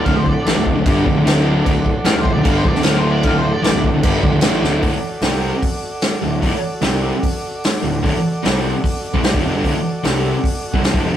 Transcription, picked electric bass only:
X:1
M:4/4
L:1/16
Q:1/4=150
K:Dmix
V:1 name="Picked electric bass" clef=bass
D,,, D,,,2 z A,,, D,,,2 D,,, G,,,2 D,,, D,,, D,,,4 | D,,, D,,,2 z A,,, D,,,2 D,,, G,,,2 D,,, D,,, D,,,4 | D,,, D,,,2 z A,,, D,,,2 D,,, G,,,2 D,,, D,,, A,,,2 D,,,2 | D,,, z3 C,,3 z6 z D,,,2 |
D,,, z3 C,,3 z6 z D,,,2 | D,,, z3 C,,3 z4 C,, C,, D,,, =F,,, G,,, | D,,, z3 C,,3 z4 C,, C,, D,,, =F,,, G,,, |]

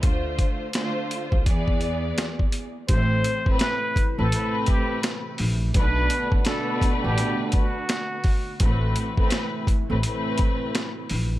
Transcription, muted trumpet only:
X:1
M:4/4
L:1/16
Q:"Swing 16ths" 1/4=84
K:Ephr
V:1 name="Muted trumpet"
z16 | [K:Ador] c4 B3 A3 G2 z4 | B4 A3 G3 F6 | z16 |]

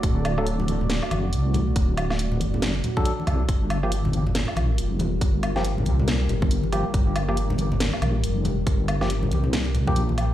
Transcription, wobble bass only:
X:1
M:4/4
L:1/16
Q:"Swing 16ths" 1/4=139
K:Gm
V:1 name="Wobble bass" clef=bass
D,,,8- D,,, z ^F,,,2 C,,4 | D,,,6 ^F,,,4 z4 C,,2 | G,,,8- G,,, z B,,,2 F,,,4 | G,,,6 C,,4 G,,,4- G,,, z |
G,,,8- G,,, z B,,,2 F,,,4 | G,,,6 C,,4- C,, B,,,4- B,,, |]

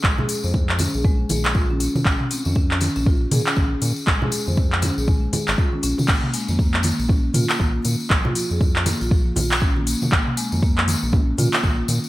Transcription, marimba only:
X:1
M:4/4
L:1/16
Q:"Swing 16ths" 1/4=119
K:Bbm
V:1 name="Marimba"
A, A A c z2 D A A, z A z F D D z | z2 C D D z D D F z A D D z3 | A, A A c z2 D A A, z A z F D D z | B, z A, B, B, z B, B, D z F B, B, z3 |
F, F F A z2 B, F F, z F z D B, B, z | z2 A, B, B, z B, B, D z F B, B, z3 |]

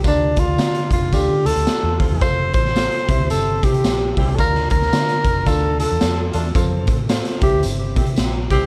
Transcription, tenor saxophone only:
X:1
M:4/4
L:1/8
Q:"Swing" 1/4=111
K:F
V:1 name="Tenor saxophone"
D F2 F G A2 z | c c3 A G2 z | B B3 A A2 z | z3 G z3 G |]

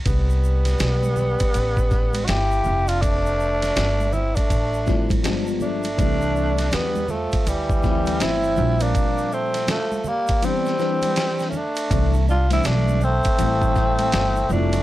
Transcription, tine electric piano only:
X:1
M:4/4
L:1/16
Q:"Swing 16ths" 1/4=81
K:C
V:1 name="Tine electric piano"
z16 | z8 z2 [F,G,A,CE]2 [F,G,_A,B,D]3 z | [E,G,A,CD]4- [E,G,A,CD] z4 z [E,G,A,C_E=E]4 [_B,,F,G,CD]2- | [_B,,F,G,CD]4 z4 [E,G,=B,CD]2 [E,G,CDB]4 z2 |
[E,G,A,CD]2 z [E,G,A,CD]3 z2 [E,G,A,CE]4- [E,G,A,CE] z [F,G,A,CE]2 |]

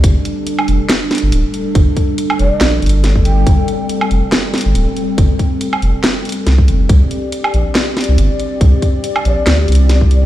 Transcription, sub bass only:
X:1
M:4/4
L:1/16
Q:"Swing 16ths" 1/4=140
K:Cdor
V:1 name="Sub bass" clef=bass
G,,, z4 z F,,, z4 G,,, D,,, z3 | G,,, z4 z F,,, z B,,,2 G,,,6 | G,,, z4 z F,,, z4 G,,, D,,, z3 | G,,, z4 z F,,, z4 z C,,2 F,,,2 |
C,, z4 z B,,, z4 C,, G,,, z3 | C,, z4 z B,,, z D,,2 C,,6 |]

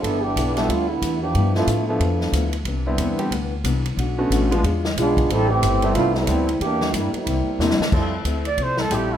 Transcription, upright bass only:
X:1
M:4/4
L:1/8
Q:"Swing" 1/4=182
K:C
V:1 name="Upright bass" clef=bass
G,,,2 B,,,2 D,,2 E,,2 | G,,2 A,,2 F,,2 D,,2 | C,,2 E,,2 D,,2 C,,2 | B,,,2 A,,,2 E,,2 B,,,2 |
A,,,2 G,,,2 C,,2 D,,2 | E,,2 G,, z C,, z E,, z | [K:F] F,,2 D,,2 C,,2 B,,,2 |]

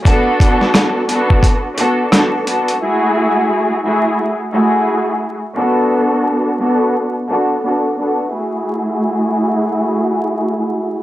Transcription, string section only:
X:1
M:4/4
L:1/8
Q:"Swing 16ths" 1/4=87
K:F#m
V:1 name="String section"
[B,DFA]3 [B,DFA] z [B,DFA] [B,DFA] [B,DFA] | [A,EFG]3 [A,EFG] z [A,EFG]2 z | [B,DFA]3 [B,DFA] z [B,DFA] [B,DFA] [B,DFA] | [A,EFG]8 |]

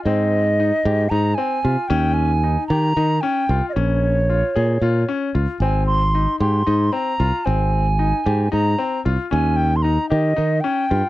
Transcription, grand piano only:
X:1
M:7/8
L:1/8
Q:1/4=114
K:Ab
V:1 name="Grand piano"
C2 E G E C F | D2 E G E D F | D2 F A F D F | C2 E G E C F |
C2 E G E C F | D2 E G E D F |]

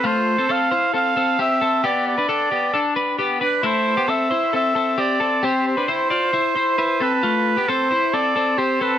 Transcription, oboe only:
X:1
M:4/4
L:1/8
Q:1/4=134
K:Flyd
V:1 name="Oboe"
c2 f2 f2 e2 | d d4- d z B | c2 e2 e2 d2 | c c6 B- |
B2 c2 d2 c B |]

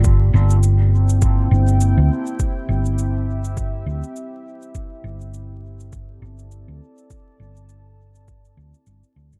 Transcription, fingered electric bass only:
X:1
M:4/4
L:1/16
Q:"Swing 16ths" 1/4=102
K:Cmix
V:1 name="Fingered electric bass" clef=bass
G,,,2 G,,,8 G,,,3 D,, z2 | z2 G,,,8 D,, z4 z | z2 G,,,8 G,,,3 D,, z2 | z2 G,,,8 D,, z G,,, z D,, G,,, |]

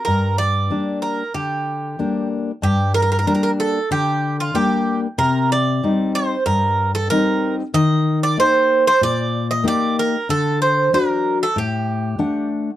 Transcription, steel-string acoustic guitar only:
X:1
M:4/4
L:1/8
Q:1/4=94
K:Gm
V:1 name="Steel-string acoustic guitar"
G,,2 [G,B,D]2 D,2 [G,B,D]2 | G,,2 [G,B,D]2 D,2 [G,B,D]2 | C,2 [G,CE]2 G,,2 [G,CE]2 | E,2 [B,EG]2 B,,2 [B,EG]2 |
D,2 [^F,D^F]2 A,,2 [A,D^f]2 |]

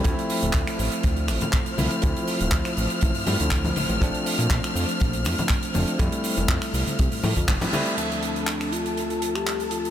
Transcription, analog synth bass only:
X:1
M:4/4
L:1/16
Q:"Swing 16ths" 1/4=121
K:Dm
V:1 name="Analog synth bass" clef=bass
D,, z2 D,,, D,, z A,,, z D,,2 A,,, z3 C,, z | D,, z2 D,,, D,, z A,,, z A,,, G,, G,, D,,3 A,,, A,,, | B,,, z2 B,, B,,, z F,, z B,,,2 F,, z3 F,,, z | F,, z2 F,,, F,, z C,, z C,, A,, A,, F,, F,,, z3 |
z16 |]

